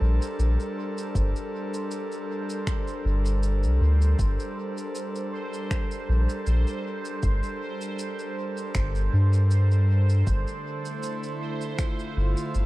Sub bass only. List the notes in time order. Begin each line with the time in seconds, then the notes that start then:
0.01 A#1
0.39 A#1
1.15 G1
3.05 G1
3.64 C2
3.81 D2
4.19 G1
6.09 A#1
6.47 A#1
7.23 G1
8.75 G1
9.13 G2
10.27 G1
12.17 G1
12.55 G1